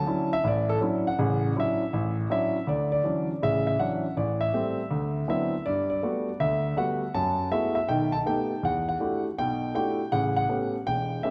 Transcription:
Already playing: A5
0.07 F#3 C#4 D4 E4
0.33 E5
0.44 A1 D5
0.69 A4
0.81 F#3 C#4 D4 E4
1.07 F#5
1.19 A1 C#3
1.56 F#3 C#4 D4 E4 E5
1.93 A1
2.30 F#3 C#4 D4 E4 E5
2.67 D2 D5
2.92 D5
3.04 E3 F#3 C#4 D4
3.42 A1 C#3 E5
3.67 E5
3.79 E3 F#3 C#4 D4 F#5
4.17 A1 D5
4.41 E5
4.53 G3 A3 C4
4.91 D2
5.28 F#3 B3 C4 D4 E4 E5
5.66 G2 D5
5.90 D5
6.03 G3 A3 B3 F#4
6.40 D2 E5
6.76 G3 A3 B3 F#4 F#5
7.14 F#2 F#3 A5
7.51 G#3 A3 B3 E4 F#4 E5
7.75 E5
7.88 B1 D#3 G5
8.12 A5
8.26 A3 B3 D#4 G4 G5
8.63 E2 F#5
8.89 F#5
9.00 A3 D4 E4 F#4 G4
9.38 B1 B2 G5
9.74 A3 D4 E4 F#4 G4 G5
10.12 A1 C#3 F#5
10.36 F#5
10.49 A3 B3 C#4 G4
10.87 E1 G5
11.23 A3 B3 C#4 G4 E5

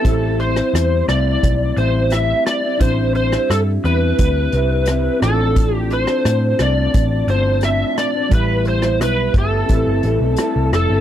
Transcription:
Already playing: A4
0.02 A1 A2 G3 C4 E4 G4, kick, closed hi-hat
0.06 E4 C5
0.40 C5, closed hi-hat
0.56 G3 C4 E4, cross-stick
0.74 E2, cross-stick, closed hi-hat
1.08 C2 A2 G3 C4 E4 D5, cross-stick, closed hi-hat
1.43 B1, kick, closed hi-hat
1.76 A1 A2 G3 C4 E4 C5, closed hi-hat
2.10 A2 G3 C4 E5, cross-stick, closed hi-hat
2.14 E4
2.46 D5, cross-stick, closed hi-hat
2.63 G3 C4 E4
2.78 A1 C3 G3 D4 E4 G4 C5, kick, closed hi-hat
2.82 C4 E4
3.15 C5, closed hi-hat
3.32 G3 C4 E4, cross-stick
3.50 G2 A4, cross-stick, closed hi-hat
3.83 E2 C3 G3 C4 B4, closed hi-hat
3.87 E4
4.18 D2, kick, closed hi-hat
4.52 C2 C3 G3 C4 E4, closed hi-hat
4.86 C3 G3 C4, cross-stick, closed hi-hat
4.90 E4
5.20 A1 A2 F3 C4 E4 F4 A4, cross-stick, closed hi-hat
5.24 C4 D4 A4
5.56 kick, closed hi-hat
5.76 G4
5.91 C5, closed hi-hat
6.07 F3 C4 D4, cross-stick
6.25 A2, cross-stick, closed hi-hat
6.59 C2 A2 F3 C4 D4 D5, cross-stick, closed hi-hat
6.94 A1, kick, closed hi-hat
7.27 G1 A2 F3 C4 C5, closed hi-hat
7.32 D4
7.61 A2 F3 E5, cross-stick, closed hi-hat
7.65 C4 D4
7.98 D5, cross-stick, closed hi-hat
8.15 F3 C4 D4
8.29 A1 A2 G3 E4 G4, kick, closed hi-hat
8.34 G3 B3 E4 B4
8.65 C5, closed hi-hat
8.82 E4, cross-stick
8.86 G3 B3
9.01 B1 B4, cross-stick, closed hi-hat
9.34 G1 A2 G3, kick, closed hi-hat
9.38 B3 E4 A4
9.66 A1 A2 G3 C4 E4 G4, kick, closed hi-hat
9.71 C4 E4 B4
9.87 G1
10.03 A1 A2 G3 C4 E4, closed hi-hat
10.21 B1
10.36 A2 G3 C4, cross-stick, closed hi-hat
10.41 E4
10.56 C2
10.73 F1 A4, cross-stick, closed hi-hat
10.90 G1 C4 E4
10.94 G3

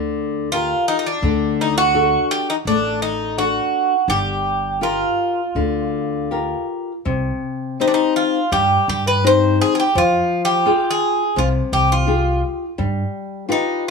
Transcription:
Already playing: D2 D3
0.52 F4 G4 A#4
0.88 D#4
0.99 D#4
1.07 D4
1.22 D2 D3
1.61 D#4
1.78 F#4
1.94 D4 F#4 A4
2.31 G4
2.50 D#4
2.65 A1 A3 D4
3.02 D#4
3.38 D4 F#4 A4
4.08 G1 G3 G4
4.81 F4 G4 A#4
5.55 D2 D3
6.31 F4 G4 A#4
7.05 C2 C3
7.80 C4 D#4 G4
7.88 D4
7.94 D#4
8.16 F4
8.52 G2 G3 G4
8.88 G2 G4
9.07 B4
9.24 C4 D#4 G4 C5
9.61 G#4
9.75 G#4
9.80 G4
9.95 F2 F3 F4
10.45 G4
10.66 F4 G#4 G5
10.90 G#4
11.36 C2 C3 F4
11.72 C2 G4
11.92 F4
12.06 F4 G4 G#4
12.78 G2 G3
13.49 D#4 F4 G4 B4

